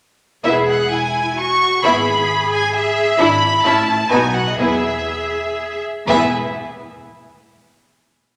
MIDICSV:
0, 0, Header, 1, 6, 480
1, 0, Start_track
1, 0, Key_signature, 4, "major"
1, 0, Tempo, 468750
1, 455, Time_signature, 3, 2, 24, 8
1, 1411, Tempo, 453515
1, 4291, Tempo, 495868
1, 6211, Tempo, 473186
1, 8526, End_track
2, 0, Start_track
2, 0, Title_t, "Violin section"
2, 0, Program_c, 0, 48
2, 451, Note_on_c, 0, 76, 59
2, 533, Note_off_c, 0, 76, 0
2, 715, Note_on_c, 0, 78, 58
2, 943, Note_off_c, 0, 78, 0
2, 944, Note_on_c, 0, 80, 61
2, 1414, Note_off_c, 0, 80, 0
2, 1430, Note_on_c, 0, 85, 76
2, 1893, Note_on_c, 0, 83, 65
2, 1896, Note_off_c, 0, 85, 0
2, 2612, Note_off_c, 0, 83, 0
2, 2616, Note_on_c, 0, 80, 71
2, 2848, Note_off_c, 0, 80, 0
2, 2859, Note_on_c, 0, 76, 77
2, 3320, Note_off_c, 0, 76, 0
2, 3335, Note_on_c, 0, 83, 86
2, 3807, Note_off_c, 0, 83, 0
2, 3812, Note_on_c, 0, 81, 75
2, 4296, Note_off_c, 0, 81, 0
2, 4298, Note_on_c, 0, 80, 65
2, 4526, Note_off_c, 0, 80, 0
2, 4541, Note_on_c, 0, 78, 51
2, 4650, Note_off_c, 0, 78, 0
2, 4661, Note_on_c, 0, 75, 48
2, 4762, Note_on_c, 0, 76, 58
2, 4771, Note_off_c, 0, 75, 0
2, 5952, Note_off_c, 0, 76, 0
2, 6220, Note_on_c, 0, 76, 68
2, 6486, Note_off_c, 0, 76, 0
2, 8526, End_track
3, 0, Start_track
3, 0, Title_t, "Violin section"
3, 0, Program_c, 1, 48
3, 459, Note_on_c, 1, 76, 44
3, 461, Note_on_c, 1, 64, 45
3, 682, Note_off_c, 1, 76, 0
3, 684, Note_off_c, 1, 64, 0
3, 1897, Note_on_c, 1, 64, 53
3, 1900, Note_on_c, 1, 76, 54
3, 2119, Note_off_c, 1, 64, 0
3, 2121, Note_off_c, 1, 76, 0
3, 3313, Note_on_c, 1, 76, 56
3, 3314, Note_on_c, 1, 64, 55
3, 3539, Note_off_c, 1, 76, 0
3, 3540, Note_off_c, 1, 64, 0
3, 3808, Note_on_c, 1, 76, 49
3, 3809, Note_on_c, 1, 64, 49
3, 4031, Note_off_c, 1, 76, 0
3, 4032, Note_off_c, 1, 64, 0
3, 4296, Note_on_c, 1, 66, 48
3, 4301, Note_on_c, 1, 71, 50
3, 4509, Note_off_c, 1, 66, 0
3, 4511, Note_off_c, 1, 71, 0
3, 4758, Note_on_c, 1, 68, 39
3, 4763, Note_on_c, 1, 71, 42
3, 4985, Note_off_c, 1, 68, 0
3, 4988, Note_off_c, 1, 71, 0
3, 6211, Note_on_c, 1, 68, 58
3, 6212, Note_on_c, 1, 71, 57
3, 6482, Note_off_c, 1, 68, 0
3, 6482, Note_off_c, 1, 71, 0
3, 8526, End_track
4, 0, Start_track
4, 0, Title_t, "Cello section"
4, 0, Program_c, 2, 48
4, 460, Note_on_c, 2, 68, 51
4, 908, Note_off_c, 2, 68, 0
4, 943, Note_on_c, 2, 64, 47
4, 1411, Note_on_c, 2, 66, 53
4, 1414, Note_off_c, 2, 64, 0
4, 1895, Note_on_c, 2, 68, 61
4, 1896, Note_off_c, 2, 66, 0
4, 2833, Note_off_c, 2, 68, 0
4, 2858, Note_on_c, 2, 68, 65
4, 3319, Note_off_c, 2, 68, 0
4, 3329, Note_on_c, 2, 64, 57
4, 4293, Note_off_c, 2, 64, 0
4, 4296, Note_on_c, 2, 66, 48
4, 4754, Note_off_c, 2, 66, 0
4, 4764, Note_on_c, 2, 68, 40
4, 5953, Note_off_c, 2, 68, 0
4, 6223, Note_on_c, 2, 40, 62
4, 6488, Note_off_c, 2, 40, 0
4, 8526, End_track
5, 0, Start_track
5, 0, Title_t, "Viola section"
5, 0, Program_c, 3, 48
5, 453, Note_on_c, 3, 64, 45
5, 461, Note_on_c, 3, 59, 47
5, 679, Note_off_c, 3, 64, 0
5, 683, Note_off_c, 3, 59, 0
5, 1893, Note_on_c, 3, 59, 54
5, 1896, Note_on_c, 3, 64, 58
5, 2117, Note_off_c, 3, 59, 0
5, 2119, Note_off_c, 3, 64, 0
5, 3321, Note_on_c, 3, 62, 57
5, 3326, Note_on_c, 3, 64, 61
5, 3544, Note_off_c, 3, 62, 0
5, 3547, Note_off_c, 3, 64, 0
5, 3796, Note_on_c, 3, 61, 48
5, 3799, Note_on_c, 3, 64, 53
5, 4025, Note_off_c, 3, 61, 0
5, 4026, Note_off_c, 3, 64, 0
5, 4290, Note_on_c, 3, 59, 51
5, 4294, Note_on_c, 3, 63, 52
5, 4506, Note_off_c, 3, 59, 0
5, 4508, Note_off_c, 3, 63, 0
5, 4758, Note_on_c, 3, 59, 44
5, 4761, Note_on_c, 3, 64, 42
5, 4985, Note_off_c, 3, 59, 0
5, 4987, Note_off_c, 3, 64, 0
5, 6220, Note_on_c, 3, 59, 61
5, 6220, Note_on_c, 3, 64, 59
5, 6486, Note_off_c, 3, 59, 0
5, 6486, Note_off_c, 3, 64, 0
5, 8526, End_track
6, 0, Start_track
6, 0, Title_t, "Double bass section"
6, 0, Program_c, 4, 48
6, 455, Note_on_c, 4, 28, 46
6, 859, Note_off_c, 4, 28, 0
6, 1900, Note_on_c, 4, 32, 57
6, 2297, Note_off_c, 4, 32, 0
6, 3326, Note_on_c, 4, 32, 64
6, 3723, Note_off_c, 4, 32, 0
6, 3806, Note_on_c, 4, 33, 55
6, 4211, Note_off_c, 4, 33, 0
6, 4291, Note_on_c, 4, 35, 53
6, 4680, Note_off_c, 4, 35, 0
6, 4768, Note_on_c, 4, 40, 40
6, 5170, Note_off_c, 4, 40, 0
6, 6218, Note_on_c, 4, 28, 58
6, 6485, Note_off_c, 4, 28, 0
6, 8526, End_track
0, 0, End_of_file